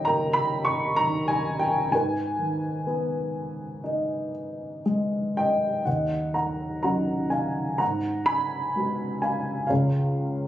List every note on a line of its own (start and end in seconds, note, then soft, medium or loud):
0.00 1.89 D#2 medium
0.00 0.49 A#2 soft
0.00 0.96 G3 medium
0.00 1.94 C#5 medium
0.00 1.94 D#5 medium
0.00 0.07 G5 medium
0.05 1.89 A#3 medium
0.05 1.58 G5 medium
0.05 0.37 A#5 medium
0.33 0.67 B5 loud
0.65 0.95 C#6 medium
0.96 1.90 D#3 medium
0.96 1.30 A#5 loud
1.28 1.58 G#5 medium
1.59 1.92 G5 medium
1.91 5.82 G#2 medium
1.91 4.82 G#5 medium
1.95 4.83 B4 medium
2.39 4.30 D#3 soft
2.87 4.82 B3 medium
3.84 5.82 D#4 medium
4.86 5.83 G#3 medium
5.37 5.84 D#5 medium
5.37 5.83 G5 medium
5.85 7.77 D#2 soft
5.85 6.32 D#5 soft
5.85 6.34 F#5 medium
6.34 6.80 F#5 soft
6.34 6.81 A#5 medium
6.83 7.78 F#3 soft
6.83 7.78 C#4 soft
6.83 7.78 D#4 soft
6.83 7.29 F#5 medium
6.83 7.28 A#5 medium
7.30 7.77 F5 soft
7.30 7.76 G#5 medium
7.78 9.67 G#2 soft
7.78 8.25 F#5 medium
7.78 8.29 A#5 medium
8.26 9.19 G#5 medium
8.26 9.18 B5 loud
8.76 9.67 G#3 soft
8.76 9.68 B3 soft
8.76 9.68 F#4 soft
9.22 9.65 F5 soft
9.22 9.66 G#5 medium
9.67 10.47 C#2 medium
9.67 10.47 C#5 soft
9.67 10.47 F5 medium